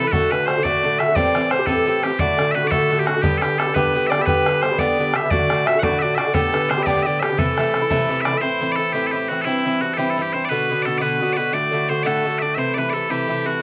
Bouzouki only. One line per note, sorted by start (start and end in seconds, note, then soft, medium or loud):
0.04 0.12 E3 soft
0.04 0.12 A3 soft
0.04 0.12 E4 soft
0.12 0.30 A2 medium
0.12 0.31 D3 medium
0.12 0.31 A3 medium
0.12 0.32 F#4 medium
0.31 0.46 A2 soft
0.31 0.47 D3 medium
0.31 0.48 A3 medium
0.31 0.49 F#4 medium
0.47 0.56 A2 medium
0.47 0.56 D3 medium
0.47 0.57 A3 medium
0.47 0.55 F#4 medium
0.56 0.63 D3 soft
0.56 0.64 A3 soft
0.56 0.64 F#4 soft
0.64 0.82 A2 medium
0.64 0.83 D3 medium
0.64 0.84 A3 medium
0.64 0.84 F#4 medium
0.83 0.97 A2 medium
0.83 0.99 D3 medium
0.83 1.00 A3 medium
0.83 1.00 F#4 medium
0.99 1.07 A2 medium
0.99 1.08 D3 medium
0.99 1.07 A3 medium
0.99 1.06 F#4 medium
1.07 1.16 D3 soft
1.07 1.16 A3 soft
1.07 1.16 F#4 soft
1.16 1.33 A2 medium
1.16 1.34 E3 medium
1.16 1.35 C4 medium
1.16 1.35 G4 medium
1.34 1.50 A2 medium
1.34 1.50 E3 medium
1.34 1.51 C4 medium
1.34 1.52 G4 medium
1.51 1.59 A2 soft
1.51 1.60 E3 medium
1.51 1.59 C4 medium
1.51 1.58 G4 medium
1.59 1.67 E3 soft
1.59 1.67 C4 soft
1.59 1.67 G4 medium
1.67 1.85 A2 medium
1.67 1.86 E3 medium
1.67 1.86 C4 medium
1.67 1.87 G4 medium
1.86 2.02 A2 medium
1.86 2.03 E3 medium
1.86 2.03 C4 medium
1.86 2.04 G4 medium
2.03 2.11 A2 medium
2.03 2.11 E3 medium
2.03 2.10 C4 medium
2.03 2.09 G4 medium
2.10 2.20 E3 soft
2.10 2.20 C4 soft
2.10 2.19 G4 soft
2.19 2.36 A2 medium
2.19 2.37 D3 medium
2.19 2.38 A3 medium
2.19 2.39 F#4 medium
2.37 2.53 A2 medium
2.37 2.54 D3 medium
2.37 2.55 A3 medium
2.37 2.55 F#4 medium
2.55 2.63 A2 medium
2.55 2.63 D3 medium
2.55 2.63 A3 medium
2.55 2.61 F#4 medium
2.62 2.70 D3 soft
2.62 2.71 A3 soft
2.62 2.71 F#4 soft
2.71 2.89 A2 medium
2.71 2.89 D3 medium
2.71 2.90 A3 medium
2.71 2.91 F#4 medium
2.90 3.05 A2 medium
2.90 3.06 D3 medium
2.90 3.07 A3 medium
2.90 3.08 F#4 medium
3.07 3.15 A2 medium
3.07 3.15 D3 medium
3.07 3.15 A3 medium
3.07 3.14 F#4 medium
3.15 3.22 D3 soft
3.15 3.23 A3 soft
3.15 3.23 F#4 soft
3.23 3.41 G2 medium
3.23 3.42 D3 medium
3.23 3.42 B3 medium
3.23 3.43 G4 medium
3.42 3.57 G2 medium
3.42 3.58 D3 medium
3.42 3.59 B3 medium
3.42 3.59 G4 medium
3.58 3.66 G2 medium
3.58 3.67 D3 medium
3.58 3.67 B3 medium
3.58 3.65 G4 medium
3.67 3.75 D3 soft
3.67 3.75 B3 soft
3.67 3.75 G4 soft
3.75 3.92 G2 medium
3.75 3.93 D3 medium
3.75 3.94 B3 medium
3.75 3.95 G4 medium
3.94 4.09 G2 medium
3.94 4.10 D3 medium
3.94 4.11 B3 medium
3.94 4.11 G4 medium
4.10 4.18 G2 medium
4.10 4.19 D3 medium
4.10 4.19 B3 medium
4.10 4.18 G4 medium
4.19 4.26 D3 soft
4.19 4.27 B3 soft
4.19 4.27 G4 soft
4.27 4.45 G2 medium
4.27 4.45 D3 medium
4.27 4.47 B3 medium
4.27 4.47 G4 medium
4.46 4.61 G2 medium
4.46 4.62 D3 medium
4.46 4.62 B3 medium
4.46 4.63 G4 medium
4.62 4.71 G2 medium
4.62 4.71 D3 medium
4.62 4.70 B3 medium
4.62 4.69 G4 medium
4.71 4.78 D3 soft
4.71 4.79 B3 soft
4.71 4.79 G4 soft
4.79 4.97 G2 medium
4.79 4.97 D3 medium
4.79 4.98 B3 loud
4.79 4.99 G4 medium
4.98 5.13 G2 medium
4.98 5.13 D3 medium
4.98 5.14 B3 medium
4.98 5.15 G4 medium
5.14 5.22 G2 medium
5.14 5.23 D3 medium
5.14 5.23 B3 medium
5.14 5.21 G4 medium
5.23 5.30 D3 soft
5.23 5.31 B3 soft
5.23 5.31 G4 soft
5.30 5.48 A2 medium
5.30 5.49 D3 medium
5.30 5.49 A3 medium
5.30 5.50 F#4 medium
5.49 5.64 A2 medium
5.49 5.65 D3 medium
5.49 5.66 A3 medium
5.49 5.67 F#4 medium
5.65 5.74 A2 medium
5.65 5.74 D3 medium
5.65 5.74 A3 medium
5.65 5.73 F#4 medium
5.74 5.81 D3 soft
5.74 5.82 A3 soft
5.74 5.82 F#4 soft
5.82 5.99 A2 medium
5.82 6.00 D3 medium
5.82 6.01 A3 medium
5.82 6.02 F#4 medium
6.00 6.15 A2 medium
6.00 6.16 D3 medium
6.00 6.17 A3 medium
6.00 6.18 F#4 medium
6.17 6.25 A2 medium
6.17 6.26 D3 medium
6.17 6.25 A3 medium
6.17 6.24 F#4 medium
6.25 6.33 D3 soft
6.25 6.34 A3 soft
6.25 6.34 F#4 soft
6.34 6.51 A2 medium
6.34 6.52 D3 medium
6.34 6.53 B3 medium
6.34 6.54 G4 medium
6.53 6.68 A2 medium
6.53 6.69 D3 medium
6.53 6.69 B3 medium
6.53 6.70 G4 medium
6.69 6.77 A2 medium
6.69 6.78 D3 medium
6.69 6.77 B3 medium
6.69 6.76 G4 medium
6.78 6.85 D3 soft
6.78 6.86 B3 medium
6.78 6.86 G4 soft
6.86 7.03 A2 medium
6.86 7.04 D3 medium
6.86 7.05 B3 medium
6.86 7.06 G4 medium
7.05 7.19 A2 soft
7.05 7.21 D3 medium
7.05 7.21 B3 medium
7.05 7.22 G4 medium
7.21 7.29 A2 medium
7.21 7.30 D3 medium
7.21 7.29 B3 medium
7.21 7.28 G4 medium
7.29 7.37 D3 soft
7.29 7.38 B3 soft
7.29 7.38 G4 soft
7.37 7.56 C3 medium
7.37 7.57 E3 medium
7.37 7.57 A3 medium
7.37 7.58 E4 medium
7.57 7.73 C3 medium
7.57 7.74 E3 medium
7.57 7.74 A3 medium
7.57 7.75 E4 medium
7.74 7.82 C3 soft
7.74 7.82 E3 medium
7.74 7.81 A3 medium
7.74 7.80 E4 medium
7.82 7.89 E3 soft
7.82 7.90 A3 soft
7.82 7.90 E4 medium
7.90 8.07 C3 medium
7.90 8.08 E3 medium
7.90 8.09 A3 medium
7.90 8.10 E4 medium
8.09 8.23 C3 medium
8.09 8.24 E3 medium
8.09 8.25 A3 medium
8.09 8.25 E4 medium
8.24 8.33 C3 medium
8.24 8.34 E3 medium
8.24 8.33 A3 medium
8.24 8.31 E4 medium
8.33 8.40 E3 soft
8.33 8.42 A3 soft
8.33 8.41 E4 soft
8.41 8.59 A2 medium
8.41 8.60 E3 medium
8.41 8.60 C4 medium
8.41 8.61 E4 medium
8.60 8.76 A2 medium
8.60 8.77 E3 medium
8.60 8.77 C4 medium
8.60 8.78 E4 medium
8.77 8.92 A2 medium
8.77 8.93 E3 soft
8.77 8.94 C4 medium
8.77 8.94 E4 medium
8.94 9.12 A2 medium
8.94 9.12 E3 medium
8.94 9.13 C4 medium
8.94 9.14 E4 medium
9.13 9.28 A2 medium
9.13 9.30 E3 soft
9.13 9.30 C4 medium
9.13 9.30 E4 medium
9.30 9.45 A2 medium
9.30 9.45 E3 medium
9.30 9.45 C4 medium
9.30 9.46 E4 medium
9.46 9.64 G2 medium
9.46 9.65 E3 medium
9.46 9.65 C4 medium
9.46 9.66 E4 medium
9.65 9.80 G2 medium
9.65 9.81 E3 medium
9.65 9.82 C4 medium
9.65 9.82 E4 medium
9.81 9.97 G2 medium
9.81 9.97 E3 medium
9.81 9.97 C4 medium
9.81 9.98 E4 medium
9.98 10.16 G2 medium
9.98 10.17 E3 medium
9.98 10.17 C4 medium
9.98 10.18 E4 medium
10.17 10.32 G2 medium
10.17 10.33 E3 medium
10.17 10.34 C4 medium
10.17 10.35 E4 medium
10.33 10.50 G2 soft
10.33 10.50 E3 soft
10.33 10.51 C4 medium
10.33 10.51 E4 medium
10.51 10.69 B2 medium
10.51 10.70 D3 medium
10.51 10.70 B3 medium
10.51 10.70 F#4 medium
10.70 10.84 B2 medium
10.70 10.85 D3 medium
10.70 10.86 B3 medium
10.70 10.86 F#4 medium
10.85 11.00 B2 medium
10.85 11.00 D3 medium
10.85 11.01 B3 medium
10.85 11.01 F#4 medium
11.01 11.19 B2 medium
11.01 11.20 D3 medium
11.01 11.21 B3 medium
11.01 11.21 F#4 medium
11.21 11.35 B2 medium
11.21 11.36 D3 medium
11.21 11.37 B3 medium
11.21 11.37 F#4 medium
11.36 11.53 B2 medium
11.36 11.52 D3 medium
11.36 11.53 B3 medium
11.36 11.53 F#4 medium
11.53 11.70 A2 medium
11.53 11.71 D3 medium
11.53 11.72 A3 medium
11.53 11.73 F#4 medium
11.72 11.87 A2 medium
11.72 11.88 D3 medium
11.72 11.89 A3 medium
11.72 11.89 F#4 medium
11.89 12.03 A2 medium
11.89 12.04 D3 medium
11.89 12.05 A3 medium
11.89 12.05 F#4 medium
12.05 12.24 A2 medium
12.05 12.25 D3 medium
12.05 12.25 A3 medium
12.05 12.25 F#4 medium
12.25 12.39 A2 medium
12.25 12.40 D3 medium
12.25 12.41 A3 medium
12.25 12.42 F#4 medium
12.41 12.57 A2 soft
12.41 12.57 D3 soft
12.41 12.57 A3 medium
12.41 12.58 F#4 medium
12.57 12.75 C3 medium
12.57 12.76 E3 medium
12.57 12.77 A3 medium
12.57 12.77 E4 medium
12.76 12.91 C3 medium
12.76 12.92 E3 medium
12.76 12.93 A3 medium
12.76 12.94 E4 medium
12.93 13.08 C3 medium
12.93 13.09 E3 medium
12.93 13.09 A3 soft
12.93 13.10 E4 medium
13.10 13.26 C3 medium
13.10 13.28 E3 medium
13.10 13.28 A3 medium
13.10 13.29 E4 medium
13.28 13.44 C3 medium
13.28 13.45 E3 medium
13.28 13.45 A3 medium
13.28 13.46 E4 medium
13.45 13.60 C3 medium
13.45 13.60 E3 medium
13.45 13.61 A3 medium
13.45 13.62 E4 medium